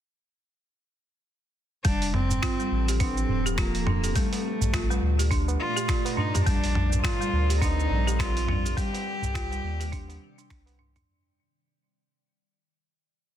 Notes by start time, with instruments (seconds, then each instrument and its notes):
1.84 sub bass F1, ambient pad F3 C4 G4 A4, marimba G3, cello D4, kick, open hi-hat, cabasa
2.02 open hi-hat, cabasa
2.14 cello C4, mid tom
2.31 tabla tin, tabla ge, cabasa
2.42 marimba F4, finger snap, kick, open hi-hat, cabasa
2.59 marimba G3, cabasa
2.71 sub bass A1
2.88 marimba G4, open hi-hat, tabla tin, cabasa
3.00 cello C4, marimba D4, kick, open hi-hat, tabla na, cabasa
3.17 cabasa
3.29 sub bass D#1, tabla ge
3.46 marimba G4, tabla na, cabasa
3.58 cello A#3, marimba F4, finger snap, kick, open hi-hat, cabasa
3.75 open hi-hat, cabasa
3.86 marimba D4, mid tom, tabla ge
4.04 marimba G4, open hi-hat, cabasa
4.15 ambient pad A#2 A3 D5, marimba G3, cello A3, kick, open hi-hat, cabasa
4.32 open hi-hat, tabla na, cabasa
4.61 sub bass A#1, tabla ge, cabasa
4.73 marimba F4, finger snap, kick, open hi-hat, tabla na, cabasa
4.90 marimba G3, tabla na, cabasa
5.02 sub bass D2
5.19 marimba G4, open hi-hat, tabla tin, cabasa
5.31 marimba D4, kick, open hi-hat, cabasa
5.48 tabla na, tabla tin, cabasa
5.60 cello F4
5.76 marimba G4, cabasa
5.88 marimba F4, finger snap, kick, open hi-hat, cabasa
6.05 open hi-hat, tabla na, cabasa
6.17 marimba D4, cello D#4, tabla ge
6.34 marimba G4, mid tom, open hi-hat, tabla ge, cabasa
6.46 sub bass A#1, ambient pad G3 A4 A#4, marimba G3, synth texture C4 C5, cello D4, kick, open hi-hat, cabasa
6.64 open hi-hat, cabasa
6.75 mid tom
6.93 tabla tin, tabla ge, cabasa
7.04 marimba F4, cello F4, finger snap, kick, open hi-hat, cabasa
7.21 marimba G3, cabasa
7.33 sub bass D2
7.49 marimba G4, open hi-hat, tabla tin, cabasa
7.61 marimba D4, cello D#4, kick, open hi-hat, tabla na, cabasa
7.80 cabasa
7.90 sub bass A#1, tabla ge
8.07 marimba G4, tabla na, cabasa
8.19 marimba F4, cello F4, finger snap, kick, open hi-hat, cabasa
8.37 open hi-hat, cabasa
8.47 marimba D4, mid tom, tabla ge
8.65 marimba G4, open hi-hat, cabasa
8.77 ambient pad C3 D#3, marimba G3, cello G4, kick, open hi-hat, cabasa
8.93 open hi-hat, tabla na, cabasa
9.22 sub bass C2, tabla ge, cabasa
9.34 marimba F4, finger snap, kick, open hi-hat, cabasa
9.51 marimba G3, tabla na, cabasa
9.64 sub bass D#2
9.80 marimba G4, open hi-hat, tabla tin, cabasa
9.92 marimba D4, kick, open hi-hat, cabasa
10.09 open hi-hat, tabla na, tabla tin, cabasa
10.38 marimba D4, cabasa
10.50 sub bass C2, marimba D4, finger snap, kick, open hi-hat, cabasa
10.66 open hi-hat, tabla na, cabasa
10.78 marimba D4, tabla tin, tabla ge
10.96 marimba D4, mid tom, open hi-hat, tabla tin, tabla ge, cabasa